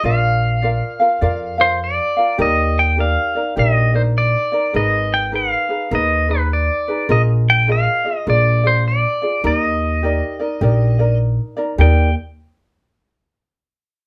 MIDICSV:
0, 0, Header, 1, 4, 480
1, 0, Start_track
1, 0, Key_signature, -3, "major"
1, 0, Tempo, 587659
1, 29, Time_signature, 4, 2, 24, 8
1, 11488, End_track
2, 0, Start_track
2, 0, Title_t, "Pedal steel guitar"
2, 0, Program_c, 0, 26
2, 46, Note_on_c, 0, 77, 100
2, 1315, Note_on_c, 0, 72, 85
2, 1339, Note_off_c, 0, 77, 0
2, 1487, Note_off_c, 0, 72, 0
2, 1501, Note_on_c, 0, 74, 87
2, 1971, Note_off_c, 0, 74, 0
2, 1974, Note_on_c, 0, 75, 90
2, 2274, Note_off_c, 0, 75, 0
2, 2280, Note_on_c, 0, 79, 84
2, 2449, Note_off_c, 0, 79, 0
2, 2454, Note_on_c, 0, 77, 94
2, 2890, Note_off_c, 0, 77, 0
2, 2934, Note_on_c, 0, 75, 87
2, 3231, Note_on_c, 0, 72, 72
2, 3235, Note_off_c, 0, 75, 0
2, 3277, Note_off_c, 0, 72, 0
2, 3413, Note_on_c, 0, 74, 87
2, 3888, Note_off_c, 0, 74, 0
2, 3892, Note_on_c, 0, 75, 97
2, 4193, Note_off_c, 0, 75, 0
2, 4196, Note_on_c, 0, 79, 88
2, 4368, Note_off_c, 0, 79, 0
2, 4374, Note_on_c, 0, 77, 90
2, 4857, Note_off_c, 0, 77, 0
2, 4859, Note_on_c, 0, 75, 91
2, 5154, Note_on_c, 0, 71, 82
2, 5157, Note_off_c, 0, 75, 0
2, 5326, Note_off_c, 0, 71, 0
2, 5336, Note_on_c, 0, 74, 79
2, 5809, Note_off_c, 0, 74, 0
2, 5812, Note_on_c, 0, 75, 87
2, 5891, Note_off_c, 0, 75, 0
2, 6125, Note_on_c, 0, 79, 83
2, 6291, Note_off_c, 0, 79, 0
2, 6304, Note_on_c, 0, 77, 98
2, 6672, Note_off_c, 0, 77, 0
2, 6672, Note_on_c, 0, 75, 98
2, 6777, Note_on_c, 0, 74, 88
2, 6781, Note_off_c, 0, 75, 0
2, 7075, Note_off_c, 0, 74, 0
2, 7082, Note_on_c, 0, 72, 79
2, 7233, Note_off_c, 0, 72, 0
2, 7251, Note_on_c, 0, 74, 82
2, 7730, Note_off_c, 0, 74, 0
2, 7733, Note_on_c, 0, 75, 81
2, 9127, Note_off_c, 0, 75, 0
2, 9646, Note_on_c, 0, 79, 80
2, 9919, Note_off_c, 0, 79, 0
2, 11488, End_track
3, 0, Start_track
3, 0, Title_t, "Ukulele"
3, 0, Program_c, 1, 24
3, 33, Note_on_c, 1, 74, 77
3, 34, Note_on_c, 1, 65, 81
3, 41, Note_on_c, 1, 70, 78
3, 41, Note_on_c, 1, 77, 88
3, 503, Note_off_c, 1, 74, 0
3, 505, Note_off_c, 1, 65, 0
3, 506, Note_on_c, 1, 74, 53
3, 515, Note_on_c, 1, 65, 59
3, 516, Note_off_c, 1, 77, 0
3, 519, Note_off_c, 1, 70, 0
3, 522, Note_on_c, 1, 70, 57
3, 526, Note_on_c, 1, 77, 64
3, 804, Note_off_c, 1, 77, 0
3, 811, Note_off_c, 1, 74, 0
3, 814, Note_off_c, 1, 70, 0
3, 814, Note_on_c, 1, 77, 60
3, 815, Note_off_c, 1, 65, 0
3, 823, Note_on_c, 1, 70, 51
3, 830, Note_on_c, 1, 65, 46
3, 987, Note_off_c, 1, 65, 0
3, 989, Note_off_c, 1, 70, 0
3, 991, Note_off_c, 1, 77, 0
3, 991, Note_on_c, 1, 74, 68
3, 996, Note_on_c, 1, 65, 69
3, 999, Note_on_c, 1, 70, 78
3, 1005, Note_on_c, 1, 77, 80
3, 1279, Note_off_c, 1, 77, 0
3, 1286, Note_off_c, 1, 70, 0
3, 1289, Note_on_c, 1, 77, 56
3, 1294, Note_off_c, 1, 65, 0
3, 1294, Note_off_c, 1, 74, 0
3, 1296, Note_on_c, 1, 70, 45
3, 1303, Note_on_c, 1, 65, 46
3, 1760, Note_off_c, 1, 77, 0
3, 1769, Note_on_c, 1, 77, 53
3, 1779, Note_off_c, 1, 65, 0
3, 1781, Note_off_c, 1, 70, 0
3, 1781, Note_on_c, 1, 70, 46
3, 1789, Note_on_c, 1, 65, 42
3, 1942, Note_off_c, 1, 70, 0
3, 1945, Note_on_c, 1, 67, 73
3, 1946, Note_off_c, 1, 65, 0
3, 1949, Note_off_c, 1, 77, 0
3, 1949, Note_on_c, 1, 63, 78
3, 1954, Note_on_c, 1, 70, 85
3, 1959, Note_on_c, 1, 74, 84
3, 2417, Note_off_c, 1, 67, 0
3, 2427, Note_on_c, 1, 67, 56
3, 2430, Note_off_c, 1, 63, 0
3, 2433, Note_off_c, 1, 74, 0
3, 2433, Note_on_c, 1, 63, 57
3, 2434, Note_off_c, 1, 70, 0
3, 2437, Note_on_c, 1, 70, 61
3, 2443, Note_on_c, 1, 74, 66
3, 2726, Note_off_c, 1, 74, 0
3, 2732, Note_off_c, 1, 67, 0
3, 2735, Note_off_c, 1, 63, 0
3, 2735, Note_off_c, 1, 70, 0
3, 2736, Note_on_c, 1, 74, 43
3, 2744, Note_on_c, 1, 70, 46
3, 2750, Note_on_c, 1, 63, 37
3, 2904, Note_off_c, 1, 63, 0
3, 2907, Note_on_c, 1, 67, 57
3, 2909, Note_off_c, 1, 70, 0
3, 2913, Note_off_c, 1, 74, 0
3, 2913, Note_on_c, 1, 63, 55
3, 2919, Note_on_c, 1, 70, 67
3, 2922, Note_on_c, 1, 74, 66
3, 3206, Note_off_c, 1, 74, 0
3, 3212, Note_off_c, 1, 67, 0
3, 3212, Note_off_c, 1, 70, 0
3, 3215, Note_off_c, 1, 63, 0
3, 3216, Note_on_c, 1, 74, 51
3, 3222, Note_on_c, 1, 70, 45
3, 3229, Note_on_c, 1, 63, 44
3, 3682, Note_off_c, 1, 74, 0
3, 3692, Note_on_c, 1, 74, 57
3, 3702, Note_off_c, 1, 70, 0
3, 3702, Note_on_c, 1, 70, 48
3, 3704, Note_off_c, 1, 63, 0
3, 3707, Note_on_c, 1, 63, 43
3, 3858, Note_off_c, 1, 70, 0
3, 3862, Note_off_c, 1, 63, 0
3, 3867, Note_on_c, 1, 70, 74
3, 3870, Note_off_c, 1, 74, 0
3, 3872, Note_on_c, 1, 63, 78
3, 3877, Note_on_c, 1, 68, 80
3, 3882, Note_on_c, 1, 71, 76
3, 4341, Note_off_c, 1, 70, 0
3, 4345, Note_off_c, 1, 63, 0
3, 4345, Note_on_c, 1, 70, 58
3, 4347, Note_off_c, 1, 71, 0
3, 4348, Note_on_c, 1, 63, 63
3, 4353, Note_off_c, 1, 68, 0
3, 4356, Note_on_c, 1, 68, 57
3, 4357, Note_on_c, 1, 71, 64
3, 4637, Note_off_c, 1, 71, 0
3, 4643, Note_off_c, 1, 70, 0
3, 4645, Note_off_c, 1, 68, 0
3, 4647, Note_on_c, 1, 71, 51
3, 4653, Note_off_c, 1, 63, 0
3, 4654, Note_on_c, 1, 68, 45
3, 4662, Note_on_c, 1, 63, 42
3, 4821, Note_off_c, 1, 63, 0
3, 4822, Note_off_c, 1, 71, 0
3, 4825, Note_on_c, 1, 70, 59
3, 4828, Note_off_c, 1, 68, 0
3, 4831, Note_on_c, 1, 63, 63
3, 4838, Note_on_c, 1, 68, 59
3, 4841, Note_on_c, 1, 71, 61
3, 5123, Note_off_c, 1, 71, 0
3, 5129, Note_off_c, 1, 70, 0
3, 5131, Note_off_c, 1, 68, 0
3, 5133, Note_on_c, 1, 71, 52
3, 5134, Note_off_c, 1, 63, 0
3, 5141, Note_on_c, 1, 68, 44
3, 5147, Note_on_c, 1, 63, 45
3, 5608, Note_off_c, 1, 71, 0
3, 5618, Note_on_c, 1, 71, 53
3, 5620, Note_off_c, 1, 63, 0
3, 5627, Note_off_c, 1, 68, 0
3, 5627, Note_on_c, 1, 68, 46
3, 5632, Note_on_c, 1, 63, 49
3, 5786, Note_off_c, 1, 68, 0
3, 5789, Note_off_c, 1, 63, 0
3, 5789, Note_on_c, 1, 70, 82
3, 5792, Note_on_c, 1, 65, 81
3, 5793, Note_off_c, 1, 71, 0
3, 5799, Note_on_c, 1, 68, 84
3, 5799, Note_on_c, 1, 75, 84
3, 6263, Note_off_c, 1, 65, 0
3, 6265, Note_off_c, 1, 70, 0
3, 6268, Note_on_c, 1, 70, 57
3, 6269, Note_off_c, 1, 68, 0
3, 6272, Note_off_c, 1, 75, 0
3, 6273, Note_on_c, 1, 65, 58
3, 6279, Note_on_c, 1, 68, 67
3, 6282, Note_on_c, 1, 75, 67
3, 6562, Note_off_c, 1, 75, 0
3, 6570, Note_off_c, 1, 68, 0
3, 6572, Note_off_c, 1, 70, 0
3, 6572, Note_on_c, 1, 75, 52
3, 6575, Note_off_c, 1, 65, 0
3, 6579, Note_on_c, 1, 68, 40
3, 6590, Note_on_c, 1, 65, 38
3, 6748, Note_off_c, 1, 65, 0
3, 6750, Note_off_c, 1, 75, 0
3, 6751, Note_off_c, 1, 68, 0
3, 6751, Note_on_c, 1, 70, 62
3, 6758, Note_on_c, 1, 65, 63
3, 6761, Note_on_c, 1, 68, 66
3, 6766, Note_on_c, 1, 74, 68
3, 7044, Note_off_c, 1, 74, 0
3, 7049, Note_off_c, 1, 68, 0
3, 7053, Note_off_c, 1, 70, 0
3, 7054, Note_on_c, 1, 74, 50
3, 7057, Note_off_c, 1, 65, 0
3, 7059, Note_on_c, 1, 68, 51
3, 7067, Note_on_c, 1, 65, 46
3, 7527, Note_off_c, 1, 74, 0
3, 7529, Note_off_c, 1, 68, 0
3, 7530, Note_on_c, 1, 74, 57
3, 7539, Note_off_c, 1, 65, 0
3, 7539, Note_on_c, 1, 68, 46
3, 7548, Note_on_c, 1, 65, 47
3, 7703, Note_off_c, 1, 68, 0
3, 7706, Note_on_c, 1, 67, 73
3, 7707, Note_off_c, 1, 65, 0
3, 7708, Note_off_c, 1, 74, 0
3, 7710, Note_on_c, 1, 63, 80
3, 7712, Note_on_c, 1, 70, 83
3, 8187, Note_off_c, 1, 70, 0
3, 8190, Note_off_c, 1, 67, 0
3, 8190, Note_on_c, 1, 67, 57
3, 8192, Note_off_c, 1, 63, 0
3, 8196, Note_on_c, 1, 63, 60
3, 8198, Note_on_c, 1, 70, 60
3, 8203, Note_on_c, 1, 74, 67
3, 8480, Note_off_c, 1, 74, 0
3, 8486, Note_off_c, 1, 70, 0
3, 8490, Note_on_c, 1, 74, 57
3, 8492, Note_off_c, 1, 67, 0
3, 8495, Note_off_c, 1, 63, 0
3, 8496, Note_on_c, 1, 70, 50
3, 8505, Note_on_c, 1, 63, 43
3, 8664, Note_off_c, 1, 63, 0
3, 8667, Note_off_c, 1, 70, 0
3, 8667, Note_on_c, 1, 67, 61
3, 8668, Note_off_c, 1, 74, 0
3, 8674, Note_on_c, 1, 63, 60
3, 8677, Note_on_c, 1, 70, 76
3, 8682, Note_on_c, 1, 74, 79
3, 8966, Note_off_c, 1, 74, 0
3, 8970, Note_off_c, 1, 67, 0
3, 8972, Note_off_c, 1, 70, 0
3, 8974, Note_off_c, 1, 63, 0
3, 8976, Note_on_c, 1, 74, 56
3, 8982, Note_on_c, 1, 70, 59
3, 8989, Note_on_c, 1, 63, 48
3, 9444, Note_off_c, 1, 74, 0
3, 9447, Note_on_c, 1, 74, 59
3, 9456, Note_off_c, 1, 70, 0
3, 9456, Note_on_c, 1, 70, 53
3, 9458, Note_off_c, 1, 63, 0
3, 9461, Note_on_c, 1, 63, 49
3, 9620, Note_off_c, 1, 63, 0
3, 9622, Note_off_c, 1, 70, 0
3, 9626, Note_off_c, 1, 74, 0
3, 9626, Note_on_c, 1, 67, 80
3, 9630, Note_on_c, 1, 63, 77
3, 9640, Note_on_c, 1, 70, 82
3, 9645, Note_on_c, 1, 74, 83
3, 9868, Note_off_c, 1, 67, 0
3, 9871, Note_off_c, 1, 63, 0
3, 9875, Note_off_c, 1, 70, 0
3, 9878, Note_off_c, 1, 74, 0
3, 11488, End_track
4, 0, Start_track
4, 0, Title_t, "Upright bass"
4, 0, Program_c, 2, 32
4, 29, Note_on_c, 2, 34, 87
4, 654, Note_off_c, 2, 34, 0
4, 995, Note_on_c, 2, 41, 84
4, 1618, Note_off_c, 2, 41, 0
4, 1950, Note_on_c, 2, 39, 96
4, 2575, Note_off_c, 2, 39, 0
4, 2914, Note_on_c, 2, 34, 89
4, 3538, Note_off_c, 2, 34, 0
4, 3875, Note_on_c, 2, 32, 86
4, 4498, Note_off_c, 2, 32, 0
4, 4830, Note_on_c, 2, 39, 91
4, 5455, Note_off_c, 2, 39, 0
4, 5792, Note_on_c, 2, 34, 87
4, 6415, Note_off_c, 2, 34, 0
4, 6754, Note_on_c, 2, 34, 88
4, 7376, Note_off_c, 2, 34, 0
4, 7710, Note_on_c, 2, 39, 93
4, 8333, Note_off_c, 2, 39, 0
4, 8667, Note_on_c, 2, 34, 93
4, 9291, Note_off_c, 2, 34, 0
4, 9625, Note_on_c, 2, 39, 92
4, 9907, Note_off_c, 2, 39, 0
4, 11488, End_track
0, 0, End_of_file